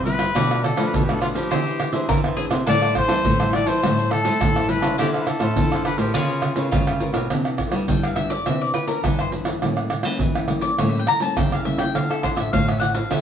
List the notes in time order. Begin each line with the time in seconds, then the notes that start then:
Already playing: G2 C3 C5
0.05 G3 B3 E4 B4 C5 E5, pandeiro, maracas
0.18 G3 B4 C5 E5, pandeiro, tamborim, maracas
0.34 B2 F3 A3 D4 A4 B4 D5 F5, pandeiro, tamborim, maracas, surdo
0.50 A4 B4 F5, pandeiro, tamborim, maracas
0.63 A4, muted cavaquinho stroke, pandeiro, tamborim, maracas
0.76 F3 A3 D4 A4 B4 F5, pandeiro, tamborim, maracas
0.86 B4
0.93 B2 A4, pandeiro, maracas, surdo
1.04 G4
1.08 F3 A3 D4 A4 B4 F5, pandeiro, tamborim, maracas
1.13 A4
1.21 D4 F4 A4 B4 F5, pandeiro, tamborim
1.34 F3 G4 A4 B4 F5, pandeiro, maracas
1.51 E3 C4 D4 G#4 C5 E5, pandeiro, tamborim, maracas, surdo
1.66 G#4 C5 E5, pandeiro, maracas
1.79 muted cavaquinho stroke, pandeiro, tamborim, maracas
1.92 E3 C4 D4 G#4 C5 E5, pandeiro, maracas
2.09 E3 A#4, pandeiro, tamborim, maracas, surdo
2.23 G#4 C5 E5, pandeiro, tamborim, maracas
2.36 C4 D4 G#4 C5 E5, pandeiro
2.50 C3 G#4 C5 E5, pandeiro, tamborim, maracas
2.66 A2 G3 C4 E4 G4 A4 C5 D5 E5 A5, pandeiro, tamborim, maracas, surdo
2.82 C5 E5 A5, pandeiro, tamborim, maracas
2.95 C5, muted cavaquinho stroke, pandeiro, tamborim, maracas, surdo
3.08 E3 G3 C4 E4 C5 E5 A5, pandeiro, tamborim, maracas
3.25 A2 E3, pandeiro, maracas, surdo
3.39 G3 C4 E4 C5 E5 A5, pandeiro, tamborim, maracas
3.52 G4 C5 D5 E5 A5, pandeiro, tamborim
3.66 E3 C5 E5 A5, pandeiro, maracas
3.82 A2 G3 C4 E4 G4 C5 E5 A5, pandeiro, tamborim, maracas, surdo
3.97 C5 E5 A5, pandeiro, maracas
4.10 A4, muted cavaquinho stroke, pandeiro, tamborim, maracas
4.23 G3 A3 C4 E4 C5 E5 A5, pandeiro, maracas
4.40 A2 E3, pandeiro, tamborim, maracas, surdo
4.55 C5 E5 A5, pandeiro, tamborim, maracas
4.68 G3 C4 E4 G4 B4 C5 E5 A5, pandeiro, maracas
4.81 C#3 C5 E5 A5, pandeiro, tamborim, maracas
4.98 D3 F3 C4 D4 E4 G4 A4 C5 F5, pandeiro, tamborim, maracas, surdo
5.12 A4 C5 F5, pandeiro, tamborim, maracas
5.21 B4
5.26 A4, muted cavaquinho stroke, pandeiro, tamborim
5.39 A2 F3 C4 E4 A4 C5 F5, pandeiro, tamborim, maracas
5.56 A2 D3, pandeiro, maracas, surdo
5.71 F3 C4 E4 A4 C5 F5, pandeiro, tamborim, maracas
5.84 D4 A4 B4 C5 F5, pandeiro, tamborim, maracas
5.97 A2 B3 F4 G4 A4 A#4 C5 F5, pandeiro, maracas
6.14 C#3 F4 G#4 B4 C#5 F5, pandeiro, tamborim, maracas, surdo
6.29 B4 C#5 F5, pandeiro, maracas
6.42 pandeiro, tamborim, maracas
6.56 C#3 B3 F4 A#4 B4 C#5 F5, pandeiro, maracas
6.71 G#2 C#3 F4, pandeiro, tamborim, maracas, surdo
6.87 B4 C#5 F5, pandeiro, tamborim, maracas
6.99 B3 F4 A#4 B4 C#5 F5, pandeiro, maracas
7.13 B2 B4 C#5 F5, pandeiro, tamborim, maracas
7.30 C3 E3 B3 D4, pandeiro, tamborim, maracas, surdo
7.45 pandeiro, tamborim, maracas
7.58 pandeiro, tamborim, surdo
7.72 E3 G3 B3 D4, pandeiro, tamborim, maracas
7.88 G2 G3 G5, pandeiro, maracas, surdo
8.03 F5, pandeiro, tamborim, maracas
8.16 E3 B3 D4 E5, pandeiro, tamborim, maracas
8.30 D5, pandeiro, maracas
8.46 C3 E3 B3 D4 E5, pandeiro, tamborim, maracas, surdo
8.61 D5, pandeiro, maracas
8.74 B4, pandeiro, tamborim, maracas
8.88 E3 B3 D4 A#4, pandeiro, maracas
9.04 G2 E3 A4, pandeiro, tamborim, maracas, surdo
9.19 C5, pandeiro, tamborim, maracas
9.32 E3 B3 D4, pandeiro, maracas
9.45 pandeiro, tamborim, maracas
9.62 A2 G3 A#3 C#4, pandeiro, tamborim, maracas, surdo
9.77 pandeiro, tamborim, maracas
9.90 pandeiro, tamborim, maracas
10.03 E3 G3 A#3 C#4, pandeiro, tamborim, maracas
10.19 E3, pandeiro, maracas, surdo
10.35 pandeiro, tamborim, maracas
10.48 G3 A#3 C#4, pandeiro, tamborim, maracas
10.61 D5, pandeiro, maracas
10.78 A2 G3 A#3 C#4 C#5, pandeiro, tamborim, maracas, surdo
10.89 E5
10.94 pandeiro, maracas
10.99 G5
11.07 A#5, pandeiro, tamborim, maracas
11.20 G3 A#3 C#4 A5, pandeiro, maracas
11.37 C#3 E3 G5, pandeiro, tamborim, maracas, surdo
11.52 F5, pandeiro, tamborim, maracas
11.65 G3 A#3 C#4 E5, pandeiro
11.78 G5, pandeiro, tamborim, maracas
11.95 D3 F3 C4 E4 F5, pandeiro, tamborim, maracas, surdo
12.10 A4, pandeiro, tamborim, maracas
12.23 F3 C4 E4 C5, pandeiro, tamborim, maracas, surdo
12.36 A2 E5, pandeiro, tamborim, maracas
12.52 A2 F3 C4 E4 F5, pandeiro, maracas, surdo
12.68 E5, pandeiro, tamborim, maracas
12.79 F#5, pandeiro, tamborim, maracas
12.94 F3 C4 E4 F5, pandeiro, maracas
13.10 D3 E5, pandeiro, tamborim, maracas, surdo